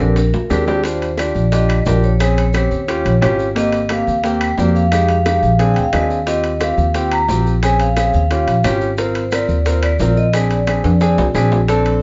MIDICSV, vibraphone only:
0, 0, Header, 1, 2, 480
1, 0, Start_track
1, 0, Key_signature, -3, "major"
1, 0, Tempo, 338983
1, 1198, Time_signature, 4, 2, 24, 8
1, 17023, End_track
2, 0, Start_track
2, 0, Title_t, "Vibraphone"
2, 0, Program_c, 0, 11
2, 8, Note_on_c, 0, 70, 68
2, 908, Note_off_c, 0, 70, 0
2, 1196, Note_on_c, 0, 72, 78
2, 1645, Note_off_c, 0, 72, 0
2, 1681, Note_on_c, 0, 74, 73
2, 2149, Note_on_c, 0, 75, 78
2, 2176, Note_off_c, 0, 74, 0
2, 2602, Note_off_c, 0, 75, 0
2, 2644, Note_on_c, 0, 70, 78
2, 2888, Note_on_c, 0, 73, 76
2, 2890, Note_off_c, 0, 70, 0
2, 3346, Note_off_c, 0, 73, 0
2, 3363, Note_on_c, 0, 73, 75
2, 4748, Note_off_c, 0, 73, 0
2, 5056, Note_on_c, 0, 75, 88
2, 5497, Note_off_c, 0, 75, 0
2, 5545, Note_on_c, 0, 77, 85
2, 5982, Note_off_c, 0, 77, 0
2, 6010, Note_on_c, 0, 79, 97
2, 6493, Note_on_c, 0, 74, 82
2, 6502, Note_off_c, 0, 79, 0
2, 6713, Note_off_c, 0, 74, 0
2, 6738, Note_on_c, 0, 77, 95
2, 7197, Note_off_c, 0, 77, 0
2, 7214, Note_on_c, 0, 77, 83
2, 8080, Note_off_c, 0, 77, 0
2, 8125, Note_on_c, 0, 79, 78
2, 8256, Note_off_c, 0, 79, 0
2, 8261, Note_on_c, 0, 77, 82
2, 8388, Note_off_c, 0, 77, 0
2, 8390, Note_on_c, 0, 75, 68
2, 8504, Note_on_c, 0, 77, 73
2, 8517, Note_off_c, 0, 75, 0
2, 8638, Note_off_c, 0, 77, 0
2, 8874, Note_on_c, 0, 75, 91
2, 9370, Note_on_c, 0, 77, 83
2, 9373, Note_off_c, 0, 75, 0
2, 9812, Note_off_c, 0, 77, 0
2, 9842, Note_on_c, 0, 79, 98
2, 10085, Note_on_c, 0, 82, 96
2, 10089, Note_off_c, 0, 79, 0
2, 10529, Note_off_c, 0, 82, 0
2, 10813, Note_on_c, 0, 80, 102
2, 10918, Note_off_c, 0, 80, 0
2, 11051, Note_on_c, 0, 77, 95
2, 11492, Note_off_c, 0, 77, 0
2, 11544, Note_on_c, 0, 77, 85
2, 12201, Note_off_c, 0, 77, 0
2, 12746, Note_on_c, 0, 72, 86
2, 13178, Note_off_c, 0, 72, 0
2, 13217, Note_on_c, 0, 74, 91
2, 13694, Note_on_c, 0, 72, 88
2, 13700, Note_off_c, 0, 74, 0
2, 13798, Note_off_c, 0, 72, 0
2, 13923, Note_on_c, 0, 74, 96
2, 14364, Note_off_c, 0, 74, 0
2, 14408, Note_on_c, 0, 75, 91
2, 14647, Note_off_c, 0, 75, 0
2, 14651, Note_on_c, 0, 74, 83
2, 16022, Note_off_c, 0, 74, 0
2, 17023, End_track
0, 0, End_of_file